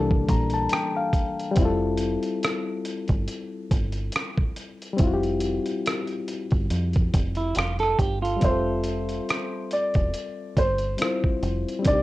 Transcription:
0.00 0.23 C2 loud
0.00 1.56 E3 medium
0.00 1.50 G3 medium
0.00 1.52 A#3 medium
0.00 1.54 D4 medium
0.00 1.57 A4 medium
0.11 kick loud
0.28 0.66 A#1 loud
0.28 0.51 A#5 medium
0.28 kick medium
0.28 closed hi-hat medium
0.50 0.70 A5 medium
0.50 closed hi-hat soft
0.69 0.94 G5 medium
0.69 cross-stick loud
0.69 closed hi-hat medium
0.97 1.53 F5 medium
1.13 kick medium
1.13 closed hi-hat medium
1.39 closed hi-hat soft
1.51 4.92 G3 medium
1.51 4.94 C4 medium
1.56 2.16 F1 loud
1.56 4.96 E4 medium
1.56 kick loud
1.56 closed hi-hat medium
1.62 4.98 F4 medium
1.62 5.00 A4 medium
1.97 closed hi-hat medium
2.23 closed hi-hat soft
2.43 cross-stick loud
2.43 closed hi-hat medium
2.85 closed hi-hat medium
3.08 3.26 G1 medium
3.08 kick medium
3.08 closed hi-hat soft
3.28 closed hi-hat medium
3.71 4.09 G1 medium
3.71 kick medium
3.71 closed hi-hat medium
3.92 closed hi-hat soft
4.12 cross-stick loud
4.12 closed hi-hat medium
4.38 kick medium
4.56 closed hi-hat medium
4.82 closed hi-hat soft
4.93 8.35 G3 medium
4.93 8.37 C4 medium
4.98 5.59 F1 loud
4.98 8.39 E4 medium
4.98 kick loud
4.98 closed hi-hat medium
5.04 8.40 F4 medium
5.04 5.11 F#4 medium
5.14 8.45 G4 medium
5.23 closed hi-hat soft
5.40 closed hi-hat medium
5.66 closed hi-hat soft
5.86 cross-stick loud
5.86 closed hi-hat medium
6.07 closed hi-hat soft
6.28 closed hi-hat medium
6.51 6.69 G1 medium
6.51 kick medium
6.51 closed hi-hat soft
6.70 7.09 F2 medium
6.70 closed hi-hat medium
6.93 kick medium
6.93 closed hi-hat soft
7.14 7.52 F1 medium
7.14 kick medium
7.14 closed hi-hat medium
7.35 7.56 E4 medium
7.35 closed hi-hat soft
7.55 7.95 F1 medium
7.55 7.79 F4 medium
7.55 cross-stick loud
7.55 closed hi-hat medium
7.79 7.98 A4 medium
7.79 closed hi-hat soft
7.83 cross-stick soft
7.98 8.37 G1 loud
7.98 8.22 G4 medium
7.98 kick medium
7.98 closed hi-hat medium
8.22 9.47 F4 medium
8.22 closed hi-hat soft
8.37 10.92 G3 medium
8.37 10.94 C4 medium
8.41 9.19 F1 loud
8.41 9.68 C5 medium
8.41 10.96 E5 medium
8.41 kick loud
8.41 closed hi-hat medium
8.47 10.98 F4 medium
8.47 10.99 A4 medium
8.83 closed hi-hat medium
9.09 closed hi-hat soft
9.29 cross-stick loud
9.29 closed hi-hat medium
9.71 10.53 D5 medium
9.71 closed hi-hat medium
9.94 10.12 E1 medium
9.94 kick medium
9.94 closed hi-hat soft
10.14 closed hi-hat medium
10.57 10.95 G1 medium
10.57 11.20 C5 medium
10.57 kick medium
10.57 closed hi-hat medium
10.78 closed hi-hat soft
10.97 11.78 G3 soft
10.97 11.81 C4 soft
10.97 11.86 E4 soft
10.97 closed hi-hat medium
11.02 11.87 F4 soft
11.02 11.88 C5 medium
11.02 cross-stick loud
11.24 kick medium
11.42 11.64 F1 medium
11.42 closed hi-hat medium
11.68 closed hi-hat soft
11.79 12.03 G3 medium
11.79 12.03 C4 medium
11.84 12.03 C2 loud
11.84 12.03 D4 medium
11.84 12.03 D5 loud
11.84 kick loud
11.84 closed hi-hat medium
11.90 12.03 D#4 medium
11.90 12.03 G4 medium

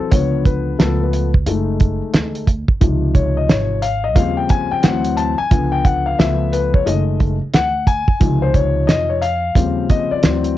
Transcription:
0.00 0.11 A4 medium
0.10 0.76 C#2 medium
0.10 0.75 D3 medium
0.10 0.76 F3 soft
0.10 0.76 B3 medium
0.10 0.42 C#5 medium
0.10 kick loud
0.10 closed hi-hat loud
0.45 0.80 B4 medium
0.45 kick medium
0.45 closed hi-hat medium
0.79 1.43 C#2 loud
0.79 1.27 F3 medium
0.79 1.27 A3 medium
0.79 1.28 B3 medium
0.79 1.02 A4 medium
0.79 snare loud
0.79 closed hi-hat medium
1.02 1.33 B4 medium
1.13 closed hi-hat medium
1.34 kick medium
1.46 1.99 F#1 loud
1.46 2.44 G#3 medium
1.46 2.44 A3 medium
1.46 2.44 D#4 medium
1.46 closed hi-hat loud
1.80 kick medium
1.80 closed hi-hat medium
2.02 muted upright bass stroke soft
2.13 2.66 D2 medium
2.13 snare loud
2.13 closed hi-hat loud
2.35 closed hi-hat medium
2.47 kick medium
2.47 closed hi-hat medium
2.68 muted upright bass stroke soft
2.68 kick medium
2.81 3.46 C#2 loud
2.81 3.79 C3 medium
2.81 3.78 D#3 medium
2.81 3.78 F3 medium
2.81 kick loud
2.81 closed hi-hat loud
3.15 3.35 C#5 medium
3.15 kick medium
3.15 closed hi-hat medium
3.37 3.49 D#5 medium
3.49 4.16 G#1 medium
3.49 3.84 C#5 medium
3.49 snare loud
3.49 closed hi-hat medium
3.82 4.04 F5 medium
3.82 closed hi-hat medium
4.04 4.17 D#5 medium
4.16 4.69 D#2 medium
4.16 4.80 C#3 medium
4.16 4.80 F3 medium
4.16 4.80 G3 medium
4.16 4.81 C4 medium
4.16 4.36 F5 medium
4.16 kick loud
4.16 closed hi-hat loud
4.37 4.50 G5 medium
4.49 4.72 G#5 medium
4.49 kick medium
4.49 closed hi-hat medium
4.71 4.84 G5 medium
4.71 muted upright bass stroke soft
4.83 5.36 D2 medium
4.83 5.32 E3 medium
4.83 5.32 F#3 medium
4.83 5.32 C4 medium
4.83 5.15 F#5 loud
4.83 snare loud
4.83 closed hi-hat loud
5.05 closed hi-hat medium
5.17 5.37 A5 loud
5.17 closed hi-hat medium
5.38 5.73 G#5 loud
5.38 muted upright bass stroke soft
5.51 6.15 C#2 medium
5.51 6.15 D3 medium
5.51 6.15 F3 medium
5.51 6.15 B3 medium
5.51 kick loud
5.51 closed hi-hat loud
5.72 5.85 G5 loud
5.84 6.07 F#5 loud
5.84 kick medium
5.84 closed hi-hat medium
6.06 6.19 F5 medium
6.19 6.83 C#2 medium
6.19 6.83 F3 medium
6.19 6.83 A3 medium
6.19 6.83 B3 medium
6.19 6.53 E5 medium
6.19 snare loud
6.19 closed hi-hat medium
6.52 6.74 B4 medium
6.52 closed hi-hat medium
6.74 6.86 C#5 medium
6.74 kick medium
6.85 7.39 F#1 loud
6.85 7.34 D#3 medium
6.85 7.34 G#3 medium
6.85 7.35 A3 medium
6.85 7.17 D#5 medium
6.85 closed hi-hat loud
7.20 kick medium
7.20 closed hi-hat medium
7.41 muted upright bass stroke soft
7.53 8.06 D2 medium
7.53 7.88 F#5 loud
7.53 snare loud
7.53 closed hi-hat loud
7.87 8.44 G#5 loud
7.87 kick medium
7.87 closed hi-hat medium
8.08 muted upright bass stroke soft
8.08 kick medium
8.20 8.85 C#2 loud
8.20 9.18 C3 medium
8.20 9.17 D#3 medium
8.20 9.18 F3 medium
8.20 kick loud
8.20 closed hi-hat loud
8.42 8.54 C5 medium
8.54 8.89 C#5 medium
8.54 kick medium
8.54 closed hi-hat medium
8.87 9.52 F2 medium
8.87 9.10 D#5 loud
8.87 snare loud
8.87 closed hi-hat medium
9.10 9.22 C#5 medium
9.22 9.91 F5 medium
9.22 closed hi-hat medium
9.55 10.08 D#2 loud
9.55 10.19 C#3 medium
9.55 10.19 F3 medium
9.55 10.20 G3 medium
9.55 10.20 C4 medium
9.55 kick medium
9.55 closed hi-hat loud
9.90 10.10 D#5 medium
9.90 kick medium
9.90 closed hi-hat medium
10.11 10.58 D5 medium
10.11 muted upright bass stroke soft
10.22 10.58 D2 loud
10.22 10.58 E3 medium
10.22 10.58 F#3 medium
10.22 10.58 C4 medium
10.22 snare loud
10.22 closed hi-hat medium
10.44 closed hi-hat medium

